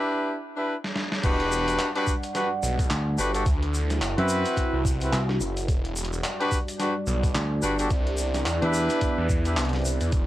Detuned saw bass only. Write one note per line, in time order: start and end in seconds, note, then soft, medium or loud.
1.24 1.77 E1 loud
2.63 2.89 B1 loud
3.18 3.44 G1 loud
3.46 4.00 D2 loud
4.02 4.15 F#1 loud
4.73 5.11 C2 loud
5.40 5.66 F#1 loud
5.68 6.22 E1 loud
7.07 7.33 B1 loud
7.63 7.89 G1 loud
7.91 8.44 C2 loud
8.46 8.60 E2 loud
9.18 9.55 E2 loud
9.57 9.83 C2 loud
9.85 9.99 C2 loud
10.01 10.11 E2 loud
10.13 10.27 E1 loud